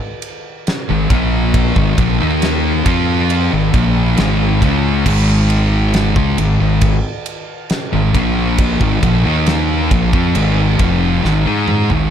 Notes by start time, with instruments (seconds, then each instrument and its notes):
0.22 ride
0.67 snare, ride
0.89 fingered electric bass G#1, distorted electric guitar G#2 D#3
1.10 fingered electric bass A#1, distorted electric guitar A#2 F3 A#3, kick, ride
1.54 kick, ride
1.76 fingered electric bass G#1, distorted electric guitar G#2 D#3, kick
1.98 fingered electric bass A#1, distorted electric guitar A#2 F3, kick, ride
2.20 fingered electric bass D#2, distorted electric guitar D#3 A#3 D#4
2.42 snare, ride
2.86 fingered electric bass F2, distorted electric guitar F3 C4 F4, kick, ride
3.30 ride
3.52 fingered electric bass G#1, distorted electric guitar G#2 D#3
3.74 fingered electric bass A#1, distorted electric guitar A#2 F3 A#3, kick, ride
4.17 fingered electric bass G#1, distorted electric guitar G#2 D#3 G#3, snare, ride
4.62 fingered electric bass C#2, distorted electric guitar C#3 G#3 C#4, kick, ride
5.06 fingered electric bass G#1, distorted electric guitar G#2 D#3 G#3, kick, crash
5.50 ride
5.94 snare, ride
6.16 fingered electric bass C#2, distorted electric guitar C#3 G#3, kick
6.38 fingered electric bass G#1, distorted electric guitar G#2 D#3, ride
6.60 fingered electric bass G#1, distorted electric guitar G#2 D#3
6.81 kick, ride
7.26 ride
7.70 snare, ride
7.93 fingered electric bass G#1, distorted electric guitar G#2 D#3
8.15 fingered electric bass A#1, distorted electric guitar A#2 F3 A#3, kick, ride
8.58 kick, ride
8.81 fingered electric bass G#1, distorted electric guitar G#2 D#3, kick
9.03 fingered electric bass A#1, distorted electric guitar A#2 F3, kick, ride
9.25 fingered electric bass D#2, distorted electric guitar D#3 A#3 D#4
9.46 snare, ride
9.91 fingered electric bass A#1, distorted electric guitar A#2 F3, kick, ride
10.13 fingered electric bass F2, distorted electric guitar F3 C4, kick
10.35 fingered electric bass G#1, distorted electric guitar G#2 D#3 G#3, ride
10.79 fingered electric bass F1, distorted electric guitar F2 C3 F3, kick, ride
11.24 fingered electric bass G#1, distorted electric guitar G#2 D#3, snare
11.46 fingered electric bass G#2, distorted electric guitar G#3 D#4 G#4
11.68 mid tom
11.90 fingered electric bass G#1, distorted electric guitar G#2 D#3, floor tom